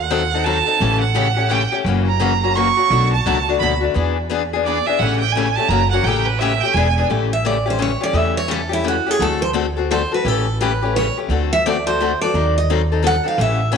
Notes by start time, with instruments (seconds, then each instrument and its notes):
Already playing: upright bass D#2, violin F#5
0.10 steel-string acoustic guitar D#3 F#3 C4 D#4 A4
0.34 steel-string acoustic guitar C4 D#4 A4
0.44 steel-string acoustic guitar D#3 F#3 C4 D#4 A4, violin A5
0.66 steel-string acoustic guitar C4 D#4 A4
0.80 upright bass A1, steel-string acoustic guitar C#3 E3 A3 C#4 G4
1.00 violin F#5
1.15 steel-string acoustic guitar C#3 E3 A3 C#4 G4
1.36 steel-string acoustic guitar A3 C#4 G4
1.50 steel-string acoustic guitar C#3 E3 A3 C#4 G4, violin G5
1.72 steel-string acoustic guitar A3 C#4 G4
1.85 upright bass F#1, steel-string acoustic guitar C#3 E3 A#3 C#4 F#4
2.07 violin A#5
2.20 steel-string acoustic guitar C#3 E3 A#3 C#4 F#4
2.44 steel-string acoustic guitar A#3 C#4 F#4
2.55 steel-string acoustic guitar C#3 E3 A#3 C#4 F#4, violin C#6
2.77 steel-string acoustic guitar A#3 C#4 F#4
2.90 upright bass B1, steel-string acoustic guitar B2 F#3 A3 D4 F#4
3.13 violin A5
3.26 upright bass C#2, steel-string acoustic guitar B2 F#3 A3 D4 F#4
3.49 steel-string acoustic guitar A3 D4 F#4
3.59 upright bass D2, steel-string acoustic guitar B2 F#3 A3 D4 F#4, violin B5
3.81 steel-string acoustic guitar A3 D4 F#4
3.94 upright bass E2, steel-string acoustic guitar E3 B3 D4 G#4
4.30 steel-string acoustic guitar E3 B3 D4 G#4
4.53 steel-string acoustic guitar B3 D4 G#4
4.64 steel-string acoustic guitar E3 B3 D4 G#4, violin D5
4.86 steel-string acoustic guitar B3 D4 G#4, violin E5
4.99 upright bass A1, steel-string acoustic guitar C#3 E3 A3 C#4 G4, violin F#5
5.20 violin G5
5.32 steel-string acoustic guitar C#3, violin G#5
5.37 steel-string acoustic guitar E3 A3 C#4 G4
5.55 steel-string acoustic guitar A3 C#4 G4, violin A5
5.69 upright bass F#1, steel-string acoustic guitar C#3 E3 A#3 C#4 F#4, violin A#5
5.91 steel-string acoustic guitar C#4 F#4, violin F#5
5.95 steel-string acoustic guitar A#3
6.03 upright bass A1, steel-string acoustic guitar C#3 E3 A3 C#4, violin G5
6.08 steel-string acoustic guitar G4
6.25 violin B4
6.39 steel-string acoustic guitar C#3 E3 A3 C#4 G4, violin E5
6.60 steel-string acoustic guitar G4, violin G5
6.65 steel-string acoustic guitar A3 C#4
6.73 upright bass E1, steel-string acoustic guitar E3 B3 D4 G#4, violin G#5
6.98 steel-string acoustic guitar B3 D4 G#4
7.10 upright bass A1, steel-string acoustic guitar C#3 E3 A3 C#4 G4
7.33 steel-string acoustic guitar E5
7.45 steel-string acoustic guitar C#3 E3 A3 C#4 G4 D5
7.66 steel-string acoustic guitar A3 C#4 G4
7.70 steel-string acoustic guitar C5
7.79 steel-string acoustic guitar C#3 E3 A3 C#4 G4 C#5
8.01 steel-string acoustic guitar A3 C#4 G4 D5
8.13 upright bass E2, steel-string acoustic guitar C#3 E3 A3 C#4 G4 E5
8.37 steel-string acoustic guitar C#5
8.48 steel-string acoustic guitar C#3 E3 A3 C#4 G4 A4
8.69 steel-string acoustic guitar A3 C#4 G4
8.73 steel-string acoustic guitar E4
8.84 steel-string acoustic guitar C#3 E3 A3 C#4 G4
8.88 steel-string acoustic guitar F#4
9.06 steel-string acoustic guitar A3 C#4 G4
9.11 steel-string acoustic guitar G#4
9.19 upright bass D2, steel-string acoustic guitar D3 A3 C4 F#4 A4
9.42 steel-string acoustic guitar C5
9.53 steel-string acoustic guitar D3 A3 C4 F#4 A4
9.77 steel-string acoustic guitar C4 F#4 A4
9.91 steel-string acoustic guitar D3 A3 C4 F#4 A4 C5
10.12 steel-string acoustic guitar C4 F#4 A4 B4
10.25 upright bass A1, steel-string acoustic guitar C#3 E3 A3 C#4 G4 A4
10.60 steel-string acoustic guitar C#3 E3 A3 C#4 G4 B4
10.82 steel-string acoustic guitar A3 C#4 G4
10.96 steel-string acoustic guitar C#3 E3 A3 C#4 G4 C#5
11.17 steel-string acoustic guitar A3 C#4 G4
11.29 upright bass D2, steel-string acoustic guitar D3 A3 C4 F#4 A4
11.53 steel-string acoustic guitar E5
11.66 steel-string acoustic guitar D3 A3 C4 F#4 A4 D5
11.86 steel-string acoustic guitar C4 F#4 A4 C5
12.00 steel-string acoustic guitar D3 A3 C4 F#4 A4
12.21 steel-string acoustic guitar C4 F#4 A4 D5
12.34 upright bass D#2, steel-string acoustic guitar D#3 F#3 C4 D#4 A4
12.58 steel-string acoustic guitar D#5
12.70 steel-string acoustic guitar D#3 F#3 C4 D#4 A4
12.92 steel-string acoustic guitar C4 D#4 A4
13.03 steel-string acoustic guitar D#3 F#3 C4 D#4 A4
13.07 steel-string acoustic guitar F#5
13.24 steel-string acoustic guitar C4 D#4 A4
13.28 steel-string acoustic guitar F5
13.38 upright bass A1, steel-string acoustic guitar C#3 E3 A3 C#4 G4 E5
13.72 steel-string acoustic guitar C#3 E3 A3 C#4 G4